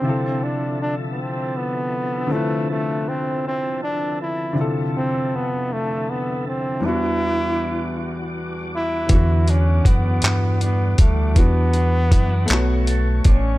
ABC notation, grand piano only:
X:1
M:6/8
L:1/8
Q:3/8=53
K:D
V:1 name="Grand piano"
[=C,D,E=FA]6 | [D,=F,=CEB]6 | [=C,D,E=FA]6 | [E,,G,B,DF]6 |
[E,,D,E,B,F]6 | [E,,E,B,DF]3 [A,B,Fc]3 |]